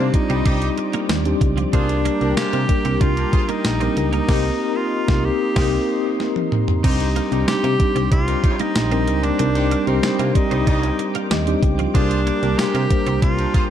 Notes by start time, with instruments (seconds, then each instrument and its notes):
Already playing: tine electric piano G3 C4 D4 D#4 G4, horn section A#3 D4 F4, clean electric guitar A#3, tenor saxophone C4, analog synth pad C5 D5 D6
0.13 tine electric piano G3 C4 D#4 F4 D5, tenor saxophone D#4, muted clean electric guitar stroke, kick, closed hi-hat
0.30 fm bass C2, horn section G3 D#4 G4, clean electric guitar C4, closed hi-hat
0.45 fm bass C2, horn section G3 D#4 G4, clean electric guitar D4, kick, closed hi-hat
0.62 closed hi-hat
0.78 muted clean electric guitar stroke, closed hi-hat
0.93 clean electric guitar A#3, closed hi-hat
1.09 fm bass D#2, clean electric guitar G3, snare, closed hi-hat, tambourine
1.25 tine electric piano G3 C4 D4 D#4 G4, closed hi-hat
1.41 fm bass C#2, muted clean electric guitar stroke, kick, closed hi-hat
1.57 clean electric guitar F3, closed hi-hat
1.73 fm bass C2, tine electric piano G3 A#3 D4 G4 A#4, clean electric guitar C4, tenor saxophone D4, horn section F4 G#4 C5, analog synth pad A#4 G5 D6, kick, closed hi-hat
1.89 closed hi-hat
2.05 clean electric guitar A#3, closed hi-hat
2.21 fm bass C2, tine electric piano G3 A#3 D4 G4 A#4, horn section D4 G4 A#4, muted clean electric guitar stroke, closed hi-hat
2.37 fm bass C3, horn section G#3 F4 C5, tenor saxophone G4, snare, closed hi-hat, tambourine
2.53 fm bass C3, clean electric guitar A#3, closed hi-hat
2.69 tine electric piano G3 A#3 D4 G4 A#4, muted clean electric guitar stroke, kick, closed hi-hat
2.85 fm bass C2, clean electric guitar C4, closed hi-hat
3.01 fm bass C2, clean electric guitar D4, tenor saxophone F4, kick, closed hi-hat
3.17 horn section D4 G4 A#4, closed hi-hat
3.33 horn section F4 G#4 C5, muted clean electric guitar stroke, kick, closed hi-hat
3.49 clean electric guitar A#3, tenor saxophone D#4, closed hi-hat
3.65 fm bass A#1, snare, closed hi-hat, tambourine
3.80 tine electric piano G3 A#3 D4 G4 A#4, clean electric guitar C4, closed hi-hat
3.97 fm bass C#2, muted clean electric guitar stroke, closed hi-hat
4.13 clean electric guitar A#3, tenor saxophone D#4, closed hi-hat
4.28 fm bass C2, tine electric piano A#3 C4 D#4 G4 A#4, horn section D#4 G4 C5, analog synth pad D#5 C6, kick, snare, crash
4.77 tenor saxophone F4
5.08 fm bass C2, tine electric piano A#3 C4 D#4 G4 A#4, kick, snare
5.25 tenor saxophone G4
5.56 fm bass C2, tine electric piano A#3 C4 D#4 G4 A#4, horn section C4 D#4 G4, kick, snare, crash
6.20 snare
6.36 high tom
6.52 mid tom
6.68 floor tom
6.83 fm bass C2, tine electric piano G3 C4 D4 D#4 G4, clean electric guitar C4, horn section D#4 G4 C5, tenor saxophone D#4, analog synth pad C5 G5 D6, kick, closed hi-hat, crash
7.00 closed hi-hat
7.16 clean electric guitar A#3, closed hi-hat
7.31 fm bass C2, tine electric piano G3 C4 D4 D#4 G4, horn section D#4 G4 A#4, muted clean electric guitar stroke, closed hi-hat
7.48 fm bass C3, horn section D#4 G4 C5, tenor saxophone G4, snare, closed hi-hat, tambourine
7.64 fm bass C3, clean electric guitar A#3, closed hi-hat
7.79 tine electric piano G3 C4 D4 D#4 G4, muted clean electric guitar stroke, kick, closed hi-hat
7.96 fm bass C2, clean electric guitar C4, closed hi-hat
8.12 fm bass C2, clean electric guitar D4, tenor saxophone F4, kick, closed hi-hat
8.28 horn section D#4 G4 A#4, closed hi-hat
8.44 horn section D#4 G4 C5, muted clean electric guitar stroke, kick, closed hi-hat
8.60 clean electric guitar A#3, tenor saxophone D#4, closed hi-hat
8.76 fm bass A#1, snare, closed hi-hat, tambourine
8.91 tine electric piano G3 C4 D4 D#4 A#4, clean electric guitar C4, closed hi-hat
9.07 fm bass C#2, muted clean electric guitar stroke, closed hi-hat
9.23 clean electric guitar A#3, tenor saxophone D4, closed hi-hat
9.39 fm bass C2, tine electric piano G3 C4 D4 D#4 A#4, clean electric guitar C4, closed hi-hat
9.55 horn section D#4 G4 C5, closed hi-hat
9.71 clean electric guitar A#3, closed hi-hat
9.87 fm bass C2, tine electric piano G3 C4 D4 D#4 G4, tenor saxophone C4, horn section D#4 G4 A#4, muted clean electric guitar stroke, closed hi-hat
10.03 fm bass C3, horn section G3 D#4 G4, snare, closed hi-hat, tambourine
10.19 fm bass C3, clean electric guitar A#3, horn section A#3 D4 F4, closed hi-hat
10.35 tine electric piano G3 C4 D#4 G4 D5, tenor saxophone D#4, muted clean electric guitar stroke, kick, closed hi-hat
10.51 fm bass C2, horn section G3 D#4 G4, clean electric guitar C4, closed hi-hat
10.67 fm bass C2, horn section G3 D#4 G4, clean electric guitar D4, kick, closed hi-hat
10.83 closed hi-hat
10.99 muted clean electric guitar stroke, closed hi-hat
11.15 clean electric guitar A#3, closed hi-hat
11.31 fm bass D#2, clean electric guitar G3, tine electric piano D#5, snare, closed hi-hat, tambourine
11.46 tine electric piano G3 C4 D4 D#4 G4, closed hi-hat
11.63 fm bass C#2, muted clean electric guitar stroke, kick, closed hi-hat
11.79 clean electric guitar F3, closed hi-hat
11.94 fm bass C2, tine electric piano G3 A#3 D4 G4 A#4, clean electric guitar C4, tenor saxophone D4, horn section F4 G#4 C5, analog synth pad A#4 G5, kick, closed hi-hat
12.11 closed hi-hat
12.27 clean electric guitar A#3, closed hi-hat
12.42 fm bass C2, tine electric piano G3 A#3 D4 G4 A#4, horn section D4 G4 A#4, muted clean electric guitar stroke, closed hi-hat
12.58 fm bass C3, horn section G#3 F4 C5, tenor saxophone G4, snare, closed hi-hat, tambourine
12.75 fm bass C3, clean electric guitar A#3, closed hi-hat
12.90 tine electric piano G3 A#3 D4 G4 C5, muted clean electric guitar stroke, kick, closed hi-hat
13.06 fm bass C2, clean electric guitar C4, closed hi-hat
13.22 fm bass C2, clean electric guitar D4, tenor saxophone F4, kick, closed hi-hat
13.38 horn section D4 G4 A#4, closed hi-hat
13.54 horn section F4 G#4 C5, muted clean electric guitar stroke, kick, closed hi-hat